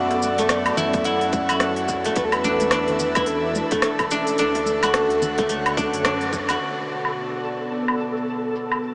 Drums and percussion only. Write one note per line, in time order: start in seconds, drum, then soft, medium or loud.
0.11 open hi-hat soft
0.11 high bongo medium
0.22 high conga medium
0.22 shaker medium
0.38 open hi-hat soft
0.38 high conga medium
0.38 shaker soft
0.49 cross-stick loud
0.49 open hi-hat medium
0.49 shaker soft
0.66 open hi-hat soft
0.66 low woodblock medium
0.77 low conga medium
0.77 shaker medium
0.93 kick loud
0.93 open hi-hat soft
0.93 high conga medium
0.93 shaker soft
1.04 open hi-hat soft
1.04 shaker soft
1.21 open hi-hat soft
1.33 kick loud
1.33 high bongo medium
1.33 high conga medium
1.33 shaker medium
1.49 open hi-hat soft
1.49 low woodblock medium
1.49 shaker soft
1.60 cross-stick medium
1.60 open hi-hat medium
1.60 shaker soft
1.76 open hi-hat soft
1.88 kick medium
1.88 high bongo medium
1.88 shaker medium
2.05 open hi-hat soft
2.05 high bongo medium
2.05 shaker soft
2.16 kick loud
2.16 open hi-hat medium
2.16 shaker soft
2.32 open hi-hat soft
2.32 high bongo medium
2.32 low woodblock medium
2.44 high conga medium
2.44 shaker medium
2.60 open hi-hat soft
2.60 high conga medium
2.60 shaker soft
2.71 cross-stick loud
2.71 open hi-hat medium
2.71 shaker soft
2.88 open hi-hat soft
2.88 low conga medium
2.99 low conga medium
2.99 shaker medium
3.15 kick loud
3.15 open hi-hat soft
3.15 high conga medium
3.15 low woodblock medium
3.15 shaker soft
3.26 open hi-hat medium
3.26 shaker soft
3.55 high conga medium
3.55 shaker medium
3.71 kick loud
3.71 open hi-hat soft
3.71 shaker soft
3.82 cross-stick loud
3.82 open hi-hat medium
3.82 shaker soft
3.99 kick medium
3.99 open hi-hat soft
3.99 low woodblock medium
4.11 high bongo medium
4.11 shaker medium
4.27 open hi-hat soft
4.27 shaker soft
4.38 open hi-hat medium
4.38 shaker soft
4.55 open hi-hat soft
4.55 high bongo medium
4.66 high conga medium
4.66 shaker medium
4.83 open hi-hat soft
4.83 high conga medium
4.83 low woodblock medium
4.83 shaker soft
4.94 cross-stick loud
4.94 open hi-hat medium
4.94 shaker soft
5.10 open hi-hat soft
5.22 low conga medium
5.22 shaker medium
5.38 kick loud
5.38 open hi-hat soft
5.38 high conga medium
5.38 shaker soft
5.49 open hi-hat medium
5.49 shaker soft
5.66 open hi-hat soft
5.66 low woodblock medium
5.77 kick loud
5.77 high bongo medium
5.77 high conga medium
5.77 shaker medium
5.93 open hi-hat soft
5.93 shaker soft
6.05 cross-stick loud
6.05 open hi-hat medium
6.05 shaker soft
6.21 open hi-hat soft
6.33 kick medium
6.33 high bongo medium
6.33 shaker medium
6.49 open hi-hat soft
6.49 high bongo medium
6.49 low woodblock medium
6.49 shaker soft
6.61 shaker soft
6.89 shaker medium
7.05 low woodblock medium
7.05 shaker soft
7.17 shaker soft
7.45 shaker medium
7.61 shaker soft
7.72 shaker soft
7.88 low woodblock medium
8.00 shaker medium
8.17 shaker soft
8.28 shaker soft
8.55 shaker medium
8.72 low woodblock medium
8.72 shaker soft
8.83 shaker soft